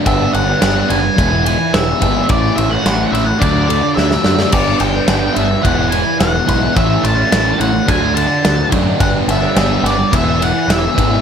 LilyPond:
<<
  \new Staff \with { instrumentName = "Lead electric guitar" } { \time 4/4 \key a \major \tempo 4 = 107 e''8 fis''4 gis''4 gis''8 e''4 | d''8 e''16 fis''8. e''16 fis''16 d''4 e''4 | d''8 g''4 e''8 fis''8 gis''8 fis''4 | e''8 a''4 fis''8 gis''8 a''4 r8 |
fis''8 e''4 d''8 e''8 fis''8 e''4 | }
  \new Staff \with { instrumentName = "Distorted electric guitar" } { \time 4/4 \key a \major <g, d g b d'>8. <g b d'>16 <g, d g b d'>8 <d g b d'>8 <e gis b e'>16 <gis b e'>16 <e gis b e'>8. r16 <e gis b e'>16 <gis b e'>16 | <a, e a cis' e'>8. <a cis' e'>16 <a, e a cis' e'>8 <e a cis' e'>8 <d fis a d'>16 <fis a d'>16 <d fis a d'>8. r16 <d fis a d'>16 <fis a d'>16 | <g, d g b d'>8. <g b d'>16 <g, d g b d'>8 <d g b d'>8 <e gis b e'>16 <gis b e'>16 <e gis b e'>8. r16 <e gis b e'>16 <gis b e'>16 | <a, e a cis' e'>8. <a cis' e'>16 <a, e a cis' e'>8 <e a cis' e'>8 <d fis a d'>16 <fis a d'>16 <d fis a d'>8. r16 <d fis a d'>16 <fis a d'>16 |
<g, d g b d'>8. <g b d'>16 <g, d g b d'>8 <d g b d'>8 <e gis b e'>16 <gis b e'>16 <e gis b e'>8. r16 <e gis b e'>16 <gis b e'>16 | }
  \new Staff \with { instrumentName = "Overdriven electric guitar" } { \time 4/4 \key a \major <g, d g b d'>8 <d g b d'>8 <g, d g b d'>8 <d g b d'>8 <e gis b e'>16 <gis b e'>16 <e gis b e'>8 <e gis b e'>8 <e gis b e'>16 <gis b e'>16 | <a, e a cis' e'>8 <e a cis' e'>8 <a, e a cis' e'>8 <e a cis' e'>8 <d fis a d'>16 <fis a d'>16 <d fis a d'>8 <d fis a d'>8 <d fis a d'>16 <fis a d'>16 | <g, d g b d'>8 <d g b d'>8 <g, d g b d'>8 <d g b d'>8 <e gis b e'>16 <gis b e'>16 <e gis b e'>8 <e gis b e'>8 <e gis b e'>16 <gis b e'>16 | <a, e a cis' e'>8 <e a cis' e'>8 <a, e a cis' e'>8 <e a cis' e'>8 <d fis a d'>16 <fis a d'>16 <d fis a d'>8 <d fis a d'>8 <d fis a d'>16 <fis a d'>16 |
<g, d g b d'>8 <d g b d'>8 <g, d g b d'>8 <d g b d'>8 <e gis b e'>16 <gis b e'>16 <e gis b e'>8 <e gis b e'>8 <e gis b e'>16 <gis b e'>16 | }
  \new Staff \with { instrumentName = "Picked electric bass" } { \clef bass \time 4/4 \key a \major g,,8 g,,8 g,,8 fis,,8 e,,4 e,,8 gis,,8 | a,,8 a,,8 a,,8 a,,8 d,4 d,8 fis,8 | g,,8 g,,8 g,,8 g,,8 e,,4 e,,8 b,,8 | a,,8 a,,8 a,,8 a,,8 d,4 d,8 fis,8 |
g,,8 g,,8 g,,8 g,,8 e,,4 e,,8 gis,,8 | }
  \new DrumStaff \with { instrumentName = "Drums" } \drummode { \time 4/4 <bd cymr>8 cymr8 <cymr sn>8 cymr8 <bd cymr>8 cymr8 <cymr sn>8 <bd cymr>8 | <bd cymr>8 cymr8 <cymr sn>8 <cymr sn>8 <bd cymr>8 cymr8 sn16 sn16 sn16 sn16 | <cymc bd cymr>8 cymr8 <cymr sn>8 cymr8 <bd cymr>8 cymr8 <cymr sn>8 <bd cymr>8 | <bd cymr>8 cymr8 <cymr sn>8 cymr8 <bd cymr>8 cymr8 <cymr sn>8 <bd cymr>8 |
<bd cymr>8 cymr8 <cymr sn>8 <cymr sn>8 <bd cymr>8 cymr8 <cymr sn>8 <bd cymr>8 | }
>>